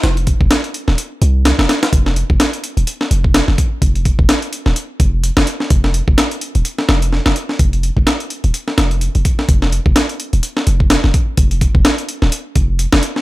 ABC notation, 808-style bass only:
X:1
M:4/4
L:1/16
Q:"Swing 16ths" 1/4=127
K:Cdor
V:1 name="808-style bass" clef=bass
F,,,3 F,,, z3 E,,, z2 C,,3 F,,, z2 | F,,,3 F,,, z3 E,,, z2 F,,,3 F,,, z2 | F,,,3 F,,, z3 E,,, z2 F,,,3 F,,, z2 | F,,,3 F,,, z3 E,,, z2 F,,,3 F,,, z2 |
F,,,3 F,,, z3 E,,, z2 F,,,3 F,,, z2 | F,,,3 F,,, z3 E,,, z2 F,,,3 F,,, z2 | F,,,3 F,,, z3 E,,, z2 F,,,3 F,,, z2 |]